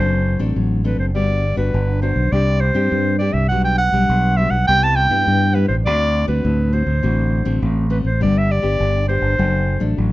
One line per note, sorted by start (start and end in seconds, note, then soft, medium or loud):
0.00 0.35 F#1 loud
0.00 0.53 F#3 medium
0.00 0.37 C4 soft
0.00 0.37 D4 soft
0.00 0.37 A4 medium
0.00 0.52 C5 medium
0.39 0.53 A1 medium
0.39 0.80 C4 medium
0.39 0.80 D4 medium
0.39 0.80 A4 medium
0.56 0.94 A1 medium
0.56 1.12 F#3 medium
0.84 1.10 C4 medium
0.84 1.10 D4 medium
0.84 1.10 A4 medium
0.84 0.99 B4 medium
0.98 1.15 F#1 medium
0.98 1.06 C5 medium
1.15 1.52 G1 loud
1.15 1.71 G3 medium
1.15 1.42 B3 soft
1.15 1.42 D4 medium
1.15 1.43 F#4 medium
1.15 1.56 D5 medium
1.56 1.70 G1 medium
1.56 1.97 B3 medium
1.56 1.97 D4 soft
1.56 1.98 F#4 medium
1.56 1.99 B4 medium
1.74 2.11 G1 medium
1.74 2.30 D3 medium
2.02 2.27 B3 soft
2.02 2.27 D4 soft
2.02 2.28 F#4 soft
2.02 2.34 C5 medium
2.16 2.29 B1 medium
2.32 2.70 C2 medium
2.32 2.88 C3 medium
2.32 2.60 C4 soft
2.32 2.60 D4 medium
2.32 2.61 G4 medium
2.32 2.62 D5 medium
2.60 3.18 C5 medium
2.74 2.88 G2 medium
2.74 3.15 C4 medium
2.74 3.15 D4 medium
2.74 3.15 G4 medium
2.91 3.47 G2 medium
2.91 3.29 G2 medium
3.19 3.45 C4 medium
3.19 3.45 D4 medium
3.19 3.46 G4 medium
3.19 3.35 D5 medium
3.33 3.51 C2 medium
3.33 3.48 E5 medium
3.49 3.88 B1 medium
3.49 4.06 B2 medium
3.49 3.78 G3 medium
3.49 3.78 D4 medium
3.49 3.79 F#4 medium
3.49 3.63 F#5 medium
3.65 3.78 G5 loud
3.78 4.39 F#5 loud
3.92 4.06 B1 medium
3.92 4.33 G3 medium
3.92 4.33 D4 medium
3.92 4.33 F#4 medium
4.09 4.47 B1 loud
4.09 4.65 B2 medium
4.37 4.56 G3 soft
4.37 4.56 D4 soft
4.37 4.56 F#4 soft
4.37 4.52 E5 loud
4.51 4.64 B1 medium
4.51 4.67 F#5 medium
4.67 5.06 C2 loud
4.67 5.24 C3 medium
4.67 5.07 G3 medium
4.67 5.08 B3 soft
4.67 5.08 E4 medium
4.67 4.85 G5 loud
4.84 4.97 A5 loud
4.96 5.56 G5 loud
5.10 5.23 G2 medium
5.10 5.50 G3 medium
5.10 5.50 B3 medium
5.10 5.51 E4 medium
5.26 5.82 G2 medium
5.26 5.65 G2 medium
5.55 5.73 G3 medium
5.55 5.73 B3 medium
5.55 5.73 E4 medium
5.55 5.68 B4 medium
5.68 5.87 A1 medium
5.68 5.76 C5 medium
5.86 6.24 D2 loud
5.86 6.41 D3 soft
5.86 6.25 A3 medium
5.86 6.25 C4 medium
5.86 6.25 F#4 medium
5.86 6.27 D5 loud
6.28 6.41 D2 medium
6.28 6.68 A3 medium
6.28 6.68 C4 medium
6.28 6.68 F#4 medium
6.28 6.75 B4 medium
6.44 6.82 D2 medium
6.44 7.00 A2 medium
6.72 6.90 A3 soft
6.72 6.90 C4 soft
6.72 6.91 F#4 medium
6.72 7.62 C5 medium
6.87 7.00 D2 medium
7.03 7.41 A1 loud
7.03 7.59 D3 medium
7.03 7.42 A3 soft
7.03 7.42 C4 soft
7.03 7.43 F#4 medium
7.45 7.59 A1 medium
7.45 7.86 A3 medium
7.45 7.86 C4 medium
7.45 7.86 F#4 medium
7.62 8.00 A1 medium
7.62 8.18 A2 medium
7.90 8.08 A3 medium
7.90 8.08 C4 medium
7.90 8.08 F#4 medium
7.90 7.98 B4 medium
8.05 8.23 A1 medium
8.05 8.20 C5 medium
8.20 8.59 G1 medium
8.20 8.76 G3 medium
8.20 8.48 B3 medium
8.20 8.48 D4 soft
8.20 8.49 G4 medium
8.20 8.39 D5 medium
8.38 8.53 E5 medium
8.51 9.08 D5 loud
8.62 8.77 G1 medium
8.62 9.03 B3 medium
8.62 9.03 D4 soft
8.62 9.03 G4 medium
8.79 9.17 G1 medium
8.79 9.35 D3 medium
9.08 9.33 B3 soft
9.08 9.34 D4 soft
9.08 9.34 G4 soft
9.08 9.93 C5 medium
9.22 9.35 G1 medium
9.38 9.76 F#1 medium
9.38 9.94 F#3 medium
9.38 9.78 A3 soft
9.38 9.78 D4 medium
9.38 9.78 A4 medium
9.80 9.94 A1 medium
9.80 10.12 A3 medium
9.80 10.12 D4 medium
9.80 10.12 A4 medium
9.97 10.12 A1 medium
9.97 10.12 F#3 soft